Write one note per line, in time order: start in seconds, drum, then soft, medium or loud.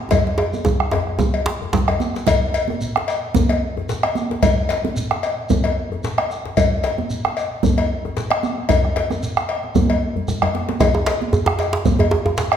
0.11 bombo rim soft
0.11 bombo low loud
0.11 cowbell medium
0.11 djembe tone loud
0.11 high conga soft
0.11 low conga medium
0.11 djembe bass medium
0.11 shekere medium
0.27 djembe slap medium
0.38 cowbell soft
0.38 djembe tone loud
0.38 high conga soft
0.53 high conga medium
0.53 djembe tone medium
0.53 shekere soft
0.65 bombo low loud
0.65 djembe tone loud
0.65 high conga soft
0.65 low conga medium
0.65 shekere medium
0.80 bombo rim medium
0.91 cowbell soft
0.91 djembe slap medium
0.91 djembe tone medium
0.91 djembe bass medium
1.07 bombo rim soft
1.07 djembe slap soft
1.19 bombo low medium
1.19 djembe tone loud
1.19 high conga medium
1.19 low conga medium
1.19 shekere medium
1.34 cowbell soft
1.46 djembe slap loud
1.62 djembe bass soft
1.73 bombo rim soft
1.73 bombo low medium
1.73 djembe slap loud
1.73 low conga medium
1.73 djembe bass soft
1.73 shekere medium
1.88 bombo rim medium
1.88 cowbell soft
1.88 djembe bass medium
2.00 djembe slap soft
2.00 high conga medium
2.00 shekere soft
2.15 bombo rim soft
2.15 djembe slap medium
2.15 shekere soft
2.27 bombo rim soft
2.27 bombo low loud
2.27 cowbell medium
2.27 low conga medium
2.27 djembe bass medium
2.27 shekere medium
2.54 cowbell medium
2.54 high conga soft
2.54 shekere soft
2.68 high conga medium
2.68 djembe tone medium
2.81 shekere medium
2.96 bombo rim medium
2.96 djembe slap medium
2.96 high conga soft
3.08 cowbell medium
3.08 djembe slap soft
3.08 shekere soft
3.34 bombo low loud
3.34 high conga medium
3.34 low conga medium
3.34 djembe bass medium
3.34 shekere medium
3.49 cowbell medium
3.49 djembe slap medium
3.77 djembe slap soft
3.77 djembe tone medium
3.89 djembe slap medium
3.89 shekere medium
4.03 bombo rim medium
4.03 cowbell medium
4.03 high conga soft
4.15 high conga medium
4.15 shekere soft
4.31 djembe slap medium
4.42 bombo rim soft
4.42 bombo low loud
4.42 cowbell medium
4.42 djembe bass medium
4.42 low conga medium
4.42 shekere medium
4.58 djembe slap soft
4.69 cowbell medium
4.69 djembe slap medium
4.69 high conga soft
4.69 shekere soft
4.84 djembe tone medium
4.84 high conga medium
4.96 shekere medium
5.11 bombo rim medium
5.11 djembe slap medium
5.11 high conga soft
5.23 cowbell medium
5.23 djembe slap soft
5.23 shekere soft
5.50 bombo low medium
5.50 high conga medium
5.50 low conga medium
5.50 djembe bass medium
5.50 shekere medium
5.64 cowbell medium
5.64 djembe slap medium
5.92 djembe slap soft
5.92 djembe tone medium
6.04 djembe slap medium
6.04 shekere medium
6.18 bombo rim medium
6.18 cowbell medium
6.18 high conga soft
6.31 shekere soft
6.45 djembe slap medium
6.57 bombo rim soft
6.57 bombo low loud
6.57 cowbell medium
6.57 low conga medium
6.57 djembe bass medium
6.57 shekere medium
6.73 djembe slap soft
6.83 cowbell medium
6.83 djembe slap medium
6.83 high conga soft
6.83 shekere soft
6.98 high conga medium
6.98 djembe tone medium
7.10 shekere medium
7.25 bombo rim medium
7.25 djembe slap medium
7.25 high conga soft
7.37 cowbell soft
7.37 djembe slap soft
7.37 shekere soft
7.63 bombo low loud
7.63 high conga medium
7.63 low conga medium
7.63 djembe bass medium
7.63 shekere medium
7.78 cowbell medium
7.78 djembe slap medium
8.05 djembe slap soft
8.05 djembe tone medium
8.17 djembe slap medium
8.17 shekere medium
8.30 bombo rim medium
8.30 cowbell medium
8.30 high conga soft
8.43 high conga medium
8.43 shekere soft
8.69 bombo rim soft
8.69 bombo low loud
8.69 cowbell medium
8.69 low conga medium
8.69 djembe bass medium
8.69 shekere medium
8.84 bombo rim soft
8.84 djembe slap soft
8.84 high conga soft
8.96 bombo rim soft
8.96 cowbell medium
8.96 djembe slap medium
9.10 bombo rim soft
9.10 high conga medium
9.10 djembe tone medium
9.10 shekere soft
9.23 shekere medium
9.37 bombo rim loud
9.37 djembe slap medium
9.37 shekere soft
9.49 cowbell medium
9.49 djembe slap soft
9.63 bombo rim soft
9.63 djembe slap soft
9.63 high conga soft
9.75 bombo low loud
9.75 high conga medium
9.75 low conga medium
9.75 djembe bass medium
9.75 shekere medium
9.90 cowbell medium
9.90 djembe slap medium
10.03 high conga soft
10.16 djembe bass soft
10.16 low conga soft
10.28 bombo rim soft
10.28 djembe bass medium
10.28 low conga medium
10.28 shekere medium
10.42 bombo rim medium
10.42 cowbell soft
10.42 low conga medium
10.42 djembe bass medium
10.54 djembe slap medium
10.54 high conga medium
10.69 djembe slap medium
10.69 high conga medium
10.80 bombo rim soft
10.80 bombo low loud
10.80 cowbell medium
10.80 djembe tone loud
10.80 low conga medium
10.80 djembe bass medium
10.80 shekere medium
10.95 djembe slap soft
10.95 djembe tone medium
11.06 cowbell medium
11.06 djembe slap medium
11.06 high conga soft
11.06 shekere soft
11.22 high conga medium
11.33 djembe bass medium
11.33 shekere medium
11.46 bombo rim medium
11.46 djembe slap medium
11.46 djembe tone loud
11.46 high conga soft
11.59 cowbell medium
11.59 djembe slap soft
11.59 djembe tone medium
11.59 shekere soft
11.73 djembe slap medium
11.85 bombo low loud
11.85 high conga medium
11.85 low conga medium
11.85 djembe bass medium
11.85 shekere medium
11.99 cowbell medium
11.99 djembe slap medium
11.99 djembe bass medium
12.11 djembe tone loud
12.26 djembe slap soft
12.26 djembe tone medium
12.38 djembe slap medium
12.38 shekere medium
12.52 bombo rim medium
12.52 cowbell medium
12.52 high conga soft